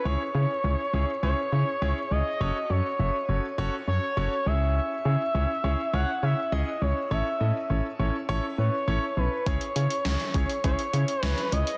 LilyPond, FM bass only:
\new Staff \with { instrumentName = "FM bass" } { \clef bass \time 4/4 \key cis \minor \tempo 4 = 102 cis,16 r16 cis16 r16 cis,16 r16 cis,16 r16 cis,16 r16 cis16 r16 cis,16 r16 cis,16 r16 | fis,,16 r16 fis,16 r16 fis,,16 r16 fis,,16 r16 fis,,16 r16 fis,16 r16 fis,,16 r16 cis,8~ | cis,16 r16 cis16 r16 cis,16 r16 cis,16 r16 cis,16 r16 cis16 r16 cis,16 r16 cis,16 r16 | a,,16 r16 a,16 r16 a,,16 r16 a,,16 r16 a,,16 r16 a,16 r16 a,,16 r16 b,,16 r16 |
cis,16 r16 cis16 r16 cis,16 r16 cis,16 r16 cis,16 r16 cis16 r16 cis,16 r16 cis,16 r16 | }